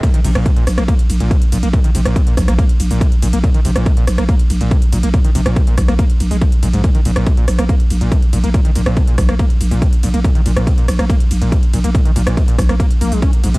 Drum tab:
RD |x-x-x-x-x-x-x-x-|x-x-x-x-x-x-x-x-|x-x-x-x-x-x-x-x-|x-x-x-x-x-x-x-x-|
HH |xxoxxxoxxxoxxxox|xxoxxxoxxxooxxox|xxoxxxoxxxoxxxox|xxoxxxoxxxooxxox|
SD |---r--rr--------|---r--rr--------|---r--rr--------|---r--rr--------|
BD |o---o---o---o---|o---o-o-o---o---|o---o---o---o---|o---o-o-o---o---|

RD |x-x-x-x-x-x-x-x-|x-x-x-x-x-x-x-x-|x-x-x-x-x-x-x-x-|x-x-x-x-x-x-x-x-|
HH |xxoxxxoxxxoxxxox|xxoxxxoxxxooxxox|xxoxxxoxxxoxxxox|xxoxxxoxxxooxxox|
SD |---r--rr--------|---r--rr--------|---r--rr--------|---r--rr--------|
BD |o---o---o---o---|o---o-o-o---o---|o---o---o---o---|o---o-o-o---o---|